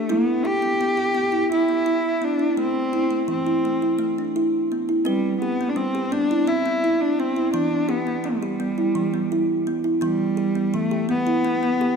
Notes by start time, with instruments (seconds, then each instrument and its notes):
Already playing: cello A3, kalimba G4
0.09 kalimba B3 E4, cello B3
0.45 kalimba G4, cello G4
0.62 kalimba B3
0.81 kalimba B3
0.97 kalimba G4
1.15 kalimba B3
1.32 kalimba E4
1.52 kalimba E4, cello E4
1.69 kalimba B3
1.86 kalimba E4
2.22 kalimba B3, cello D4
2.39 kalimba E4
2.57 kalimba A3, cello C4
2.93 kalimba E4
3.11 kalimba A3
3.28 kalimba E3, cello C4
3.46 kalimba E4
3.65 kalimba A3
3.82 kalimba E4
3.99 kalimba A3
4.18 kalimba D4
4.36 kalimba E4
4.72 kalimba B3
4.89 kalimba E4
5.05 cello G3, kalimba C4 B4
5.40 cello B3, kalimba G4
5.61 kalimba B3
5.69 cello D4
5.76 kalimba G3, cello C4
5.95 kalimba G4
6.12 kalimba B3, cello D4
6.31 kalimba E4
6.47 kalimba C4, cello E4
6.66 kalimba B3
6.84 kalimba E4
7.01 cello D4
7.19 kalimba B3, cello C4
7.36 kalimba E4
7.53 kalimba E3 B3, cello D4
7.89 cello B3, kalimba G4
8.07 kalimba B3
8.24 cello G3, kalimba B3
8.43 kalimba G4
8.60 kalimba B3
8.78 kalimba E4
8.95 kalimba E3
9.14 kalimba B3
9.32 kalimba E4
9.67 kalimba B3
9.84 kalimba E4
10.01 kalimba E3 B3, cello G3
10.37 kalimba G4
10.55 kalimba B3
10.74 kalimba E3, cello A3
10.91 kalimba G4
11.09 kalimba B3, cello B3
11.27 kalimba E4
11.45 kalimba B3
11.63 kalimba B3
11.81 kalimba G4